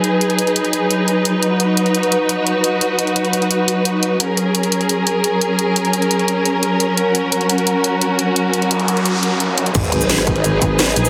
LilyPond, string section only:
\new Staff \with { instrumentName = "String section" } { \time 4/4 \key gis \minor \tempo 4 = 173 << { <fis dis' b'>1~ | <fis dis' b'>1~ | <fis dis' b'>1 | <fis cis' ais'>1~ |
<fis cis' ais'>1~ | <fis cis' ais'>1~ | <fis cis' ais'>1 | <fis dis' b'>1 | } \\ { gis'1 | fis'1~ | fis'1 | gis'1~ |
gis'1 | fis'1~ | fis'1 | gis'1 | } >> }